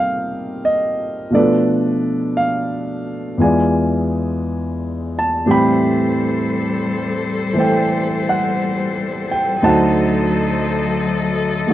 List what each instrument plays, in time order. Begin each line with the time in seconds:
Already playing: grand piano C3 G3 A#3 C4 D#4 F4 A4 A#4 D#5 F5 G5
0.65 grand piano D#5
1.30 grand piano B2 F3 A3 D4
1.35 grand piano A4 B4 D5
2.37 grand piano F5
3.38 grand piano E2 E3 G#3 G#5
3.42 grand piano F4 D5
5.19 grand piano A5
5.46 grand piano A2 E3 G3 C4 G4, cello section G3 A4 C5
5.51 grand piano G5 B5
7.54 grand piano E3 A3 A4
7.58 grand piano C5 G5
8.29 grand piano F#5
9.31 grand piano G5
9.61 grand piano D2 D3 F#3 D#4 C5 A5, cello section F#3 A4 C5 D#5
9.65 grand piano F#5
11.67 grand piano D#3 A3 F#4